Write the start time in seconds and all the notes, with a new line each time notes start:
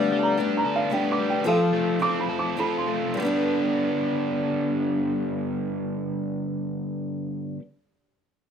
Already playing: G2 D3 G3 A3 B3 D4 G4
0.12 G3
0.19 A5
0.23 A#5
0.37 A3 B3 D4 G4
0.57 A#5
0.65 A4
0.76 F5
0.90 A3 B3 D4 G4 G5
1.12 D6
1.19 G3
1.30 G5
1.44 F3 C4 F4 A4 F5
1.73 A3
1.99 F3 C4 F4 A4 D6
2.20 B5
2.29 A4
2.39 D6
2.57 F3 C4 F4 A4 B5
2.78 C6
2.87 A3
3.14 G2 D3
3.20 G3 B3 D4 G4
3.25 D4 A4